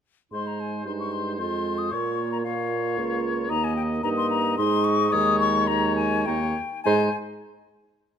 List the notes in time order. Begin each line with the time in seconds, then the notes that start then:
0.32 G#2 G#3 D#4 C5 C6
0.47 A#5
0.60 G#5
0.86 G2 G#3 D#4 C5 C6
1.00 C#6
1.12 C6
1.37 F2 G#3 F4 C5 C6
1.78 D#6
1.91 A#2 A#3 F4 C#5 C#6
2.32 A#5
2.43 A#3 F4 C#5 F5
2.98 C#2
3.49 D#2 A#3 D#4 D#5 A#5
3.64 G#5
3.76 G5
4.03 G2 A#3 D#4 D#5 A#5
4.17 C6
4.30 A#5
4.57 G#2 G#3 D#4 D#5 C6
4.84 C#6
5.12 D#2 G#3 D#4 C#5 D#6
5.40 C#6
5.67 G#3 D#4 C#5 A#5
5.96 G#5
6.26 D#2 A#3 D#4 C#5 G5
6.84 G#2 G#3 D#4 C5 G#5